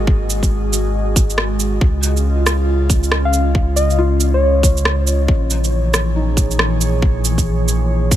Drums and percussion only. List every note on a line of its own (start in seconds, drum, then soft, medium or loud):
0.07 kick loud
0.30 shaker medium
0.43 kick medium
0.43 shaker soft
0.73 shaker medium
1.16 kick loud
1.16 shaker medium
1.30 shaker soft
1.38 cross-stick loud
1.60 shaker soft
1.81 kick loud
2.03 shaker soft
2.17 shaker soft
2.46 cross-stick loud
2.46 shaker medium
2.90 kick loud
2.90 shaker soft
3.03 shaker soft
3.12 cross-stick loud
3.33 shaker soft
3.55 kick loud
3.77 shaker soft
3.90 shaker soft
4.20 shaker medium
4.63 kick medium
4.63 shaker soft
4.77 shaker soft
4.85 cross-stick loud
5.07 shaker soft
5.28 kick loud
5.50 shaker medium
5.64 shaker soft
5.94 cross-stick loud
5.94 shaker medium
6.37 kick medium
6.37 shaker medium
6.51 shaker soft
6.59 cross-stick loud
6.81 shaker medium
7.02 kick loud
7.25 shaker medium
7.38 kick medium
7.38 shaker soft
7.68 shaker medium
8.11 kick loud
8.11 shaker medium